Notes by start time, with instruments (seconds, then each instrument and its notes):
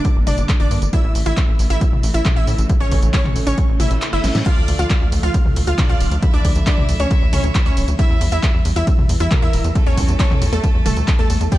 Already playing: string section D3 G3 A#3, synth pluck D4 D5, supersaw synth D6
0.05 kick, closed hi-hat, tambourine
0.16 analog synth bass G1
0.27 analog synth bass G1, synth pluck D4 D5, supersaw synth D6, open hi-hat, mid tom, tambourine
0.38 analog synth bass G1, closed hi-hat, tambourine
0.49 kick, clap, closed hi-hat, tambourine
0.60 analog synth bass G1, synth pluck D4 D5, supersaw synth D6
0.71 analog synth bass G2, open hi-hat, tambourine
0.82 analog synth bass G1, closed hi-hat, tambourine
0.93 string section C#3 E3 A3, synth pluck E4 E5, supersaw synth E6, kick, closed hi-hat, tambourine
1.04 analog synth bass A1
1.15 analog synth bass A1, open hi-hat, tambourine
1.26 analog synth bass A1, synth pluck E4 E5, supersaw synth E6, closed hi-hat, tambourine
1.37 kick, clap, closed hi-hat, tambourine
1.48 analog synth bass A1
1.59 analog synth bass A1, open hi-hat, tambourine
1.70 analog synth bass A1, synth pluck E4 E5, supersaw synth E6, closed hi-hat, tambourine
1.81 kick, closed hi-hat, tambourine
1.92 analog synth bass A1, mid tom
2.03 analog synth bass A1, open hi-hat, tambourine
2.14 analog synth bass A1, synth pluck E4 E5, supersaw synth E6, closed hi-hat, tambourine
2.25 kick, clap, closed hi-hat, mid tom, tambourine
2.36 analog synth bass A1, synth pluck E4 E5, supersaw synth E6
2.47 analog synth bass A2, open hi-hat, tambourine
2.58 analog synth bass A1, closed hi-hat, tambourine
2.69 kick, closed hi-hat, tambourine
2.80 analog synth bass A1, synth pluck C#4 C#5, supersaw synth C#6
2.91 analog synth bass A1, kick, open hi-hat, tambourine
3.03 analog synth bass A1, closed hi-hat, tambourine
3.13 synth pluck C#4 C#5, supersaw synth C#6, kick, clap, closed hi-hat, tambourine
3.25 analog synth bass A1, clap, mid tom
3.36 analog synth bass A1, open hi-hat, tambourine
3.47 analog synth bass A1, synth pluck C#4 C#5, supersaw synth C#6, closed hi-hat, tambourine
3.58 kick, closed hi-hat, tambourine, reverse cymbal
3.69 analog synth bass A1
3.80 analog synth bass A1, synth pluck E4 E5, supersaw synth E6, open hi-hat, mid tom, tambourine
3.91 analog synth bass A1, closed hi-hat, tambourine
4.02 clap, closed hi-hat, tambourine
4.13 analog synth bass G1, synth pluck E4 E5, supersaw synth E6
4.24 analog synth bass A1, snare, open hi-hat, tambourine
4.35 analog synth bass A2, snare, closed hi-hat, tambourine
4.46 string section D3 F3, violin section D4 D5, synth pluck F4 F5, supersaw synth F6, kick, closed hi-hat, ride, tambourine, crash
4.57 analog synth bass D2
4.68 analog synth bass D2, open hi-hat, ride, tambourine
4.79 analog synth bass D2, synth pluck F4 F5, supersaw synth F6, closed hi-hat, tambourine
4.90 kick, clap, closed hi-hat, ride, tambourine
5.01 analog synth bass D2
5.12 analog synth bass D2, open hi-hat, ride, tambourine
5.23 analog synth bass D2, synth pluck F4 F5, supersaw synth F6, closed hi-hat, tambourine
5.34 kick, closed hi-hat, ride, tambourine
5.45 analog synth bass D2, mid tom
5.56 analog synth bass D2, open hi-hat, ride, tambourine
5.67 analog synth bass D2, synth pluck F4 F5, supersaw synth F6, closed hi-hat, tambourine
5.78 violin section D4 D5, kick, clap, closed hi-hat, mid tom, ride, tambourine
5.89 analog synth bass D2, synth pluck F4 F5, supersaw synth F6
6.00 analog synth bass D1, open hi-hat, ride, tambourine
6.12 analog synth bass D2, closed hi-hat, tambourine
6.22 violin section E4 E5, kick, closed hi-hat, ride, tambourine
6.33 analog synth bass D2, synth pluck D4 D5, supersaw synth D6
6.45 analog synth bass D2, kick, open hi-hat, ride, tambourine
6.56 analog synth bass D2, closed hi-hat, tambourine
6.67 synth pluck D4 D5, supersaw synth D6, kick, clap, closed hi-hat, ride, tambourine
6.78 analog synth bass D2, mid tom
6.89 analog synth bass D2, open hi-hat, ride, tambourine
7.00 analog synth bass D2, synth pluck C#4 C#5, supersaw synth C#6, closed hi-hat, tambourine
7.11 kick, closed hi-hat, ride, tambourine
7.22 analog synth bass D2
7.33 analog synth bass D2, synth pluck C#4 C#5, supersaw synth C#6, open hi-hat, mid tom, ride, tambourine
7.44 analog synth bass D2, closed hi-hat, tambourine
7.55 kick, clap, closed hi-hat, ride, tambourine
7.66 analog synth bass D2, synth pluck C#4 C#5, supersaw synth C#6
7.77 analog synth bass D1, open hi-hat, ride, tambourine
7.88 analog synth bass D2, closed hi-hat, tambourine
7.99 string section E3 G3, synth pluck E4 E5, violin section E4 E5, supersaw synth E6, kick, closed hi-hat, ride, tambourine
8.10 analog synth bass E2
8.21 analog synth bass E2, open hi-hat, ride, tambourine
8.32 analog synth bass E2, synth pluck E4 E5, supersaw synth E6, closed hi-hat, tambourine
8.43 kick, clap, closed hi-hat, ride, tambourine
8.54 analog synth bass E2
8.65 analog synth bass E2, open hi-hat, ride, tambourine
8.76 analog synth bass E2, synth pluck E4 E5, supersaw synth E6, closed hi-hat, tambourine
8.87 kick, closed hi-hat, ride, tambourine
8.98 analog synth bass E2, mid tom
9.09 analog synth bass E2, open hi-hat, ride, tambourine
9.20 analog synth bass E2, synth pluck E4 E5, supersaw synth E6, closed hi-hat, tambourine
9.31 violin section A#3 A#4, kick, clap, closed hi-hat, mid tom, ride, tambourine
9.42 analog synth bass E2, synth pluck E4 E5, supersaw synth E6
9.53 analog synth bass E1, open hi-hat, ride, tambourine
9.64 analog synth bass E2, closed hi-hat, tambourine
9.75 violin section A3 A4, kick, closed hi-hat, ride, tambourine
9.86 analog synth bass E2, synth pluck C#4 C#5, supersaw synth C#6
9.97 analog synth bass E2, kick, open hi-hat, ride, tambourine
10.09 analog synth bass E2, closed hi-hat, tambourine
10.19 synth pluck C#4 C#5, supersaw synth C#6, kick, clap, closed hi-hat, ride, tambourine
10.31 analog synth bass E2, clap, mid tom
10.42 analog synth bass E2, open hi-hat, ride, tambourine
10.53 analog synth bass E2, synth pluck A3 A4, supersaw synth A5, closed hi-hat, tambourine
10.64 kick, closed hi-hat, ride, tambourine
10.75 analog synth bass E2
10.86 analog synth bass E1, synth pluck A3 A4, supersaw synth A5, open hi-hat, mid tom, ride, tambourine
10.97 analog synth bass D2, closed hi-hat, tambourine
11.08 kick, clap, closed hi-hat, ride, tambourine
11.19 analog synth bass E2, synth pluck A3 A4, supersaw synth A5
11.30 analog synth bass E2, open hi-hat, ride, tambourine
11.41 analog synth bass E2, closed hi-hat, tambourine
11.52 string section D3 A#3, violin section D4 D5, synth pluck G4 G5, supersaw synth G6, kick, closed hi-hat, ride, tambourine